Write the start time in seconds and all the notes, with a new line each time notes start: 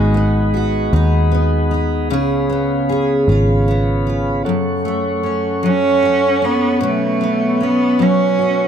Already playing: G#1 G#3 B3 D#4 F#4 G#4 D#5 F#5 B5
0.14 B3
0.54 F#4
0.93 D#2 D#4
1.32 B3
1.71 D#4
2.10 C#2 C#3 G#4 C#5 F5
2.50 B3
2.89 G#4
3.28 G#1 F4
3.68 B3
4.07 F4
4.45 F#2 A4 C#5 F#5 C#6
4.85 A3
5.23 C#4
5.63 F#3 C#4
6.03 F#4
6.42 B3 C#4
6.81 B2 A3 B4
7.21 B3
7.60 B3 C#4
7.99 F#3 C#4
8.39 F#4